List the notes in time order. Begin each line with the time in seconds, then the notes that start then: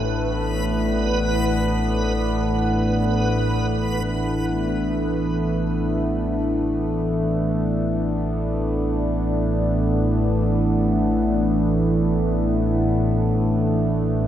Already playing: A1 A2 E3 A3 B3 D4 B4
4.03 A1 A2